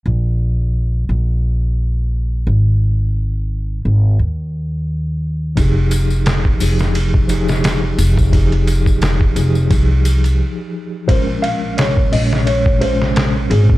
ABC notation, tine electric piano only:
X:1
M:4/4
L:1/8
Q:"Swing 16ths" 1/4=87
K:Ab
V:1 name="Tine electric piano"
z8 | z8 | [F,EGA]3 [F,EGA]2 [F,EGA]3 | [F,EGA]3 [F,EGA]2 z3 |
[B,,A,DB]3 [B,,A,Dd]2 [B,,A,Dc]3 |]